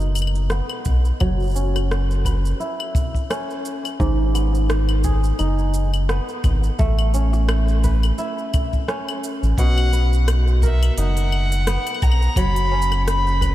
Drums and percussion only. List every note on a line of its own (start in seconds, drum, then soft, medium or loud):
0.00 shaker soft
0.15 claves medium
0.15 shaker medium
0.22 claves medium
0.27 claves soft
0.35 shaker soft
0.50 cross-stick medium
0.50 shaker soft
0.70 claves medium
0.70 shaker soft
0.85 kick medium
0.85 shaker medium
1.05 shaker soft
1.20 kick loud
1.20 claves medium
1.20 shaker soft
1.40 shaker soft
1.43 shaker soft
1.45 shaker soft
1.47 shaker soft
1.50 shaker soft
1.52 shaker soft
1.54 shaker soft
1.56 shaker medium
1.76 cross-stick soft
1.76 claves medium
1.76 shaker soft
1.91 cross-stick medium
1.91 shaker soft
2.11 shaker soft
2.25 kick medium
2.25 claves medium
2.25 shaker medium
2.45 shaker soft
2.60 shaker soft
2.80 claves medium
2.95 kick loud
2.95 shaker medium
3.15 kick medium
3.15 shaker soft
3.31 cross-stick medium
3.31 claves medium
3.31 shaker soft
3.50 shaker soft
3.65 shaker medium
3.85 claves medium
3.85 shaker soft
4.00 kick loud
4.00 shaker soft
4.35 claves medium
4.35 shaker medium
4.55 shaker soft
4.70 cross-stick loud
4.70 shaker soft
4.89 claves medium
4.89 shaker soft
5.04 kick medium
5.04 shaker medium
5.24 shaker soft
5.39 claves medium
5.39 shaker soft
5.59 shaker soft
5.74 shaker medium
5.94 claves medium
5.94 shaker soft
6.09 cross-stick medium
6.09 shaker soft
6.29 shaker soft
6.44 kick loud
6.44 claves medium
6.44 shaker medium
6.63 shaker soft
6.79 kick loud
6.79 shaker soft
6.99 claves medium
6.99 shaker soft
7.14 shaker medium
7.33 cross-stick soft
7.33 shaker soft
7.49 cross-stick loud
7.49 claves medium
7.49 shaker soft
7.68 shaker soft
7.84 kick medium
7.84 shaker medium
8.03 claves medium
8.03 shaker soft
8.18 shaker soft
8.38 shaker soft
8.54 kick loud
8.54 claves medium
8.54 shaker medium
8.73 kick medium
8.73 shaker soft
8.88 cross-stick medium
8.88 shaker soft
9.09 claves medium
9.09 shaker soft
9.24 shaker medium
9.43 shaker soft
9.58 kick medium
9.58 open hi-hat medium
9.58 shaker soft
9.78 claves medium
9.78 shaker soft
9.93 shaker medium
10.13 shaker soft
10.28 cross-stick medium
10.28 open hi-hat medium
10.28 claves medium
10.28 shaker soft
10.47 shaker soft
10.62 kick medium
10.62 shaker medium
10.83 open hi-hat soft
10.83 claves medium
10.98 open hi-hat medium
10.98 shaker soft
11.17 open hi-hat soft
11.17 shaker soft
11.32 claves medium
11.52 open hi-hat soft
11.52 shaker soft
11.67 cross-stick medium
11.67 open hi-hat medium
11.67 shaker soft
11.87 open hi-hat soft
11.87 claves soft
11.87 shaker soft
11.95 claves soft
12.02 kick loud
12.02 claves soft
12.02 shaker medium
12.12 claves medium
12.22 shaker soft
12.36 kick loud
12.36 open hi-hat medium
12.36 claves medium
12.36 shaker soft
12.56 open hi-hat soft
12.56 shaker soft
12.82 shaker medium
12.92 cross-stick soft
12.92 claves medium
12.92 shaker soft
13.08 cross-stick medium
13.08 open hi-hat medium
13.08 shaker soft
13.27 shaker soft
13.41 kick medium
13.41 claves medium
13.41 shaker medium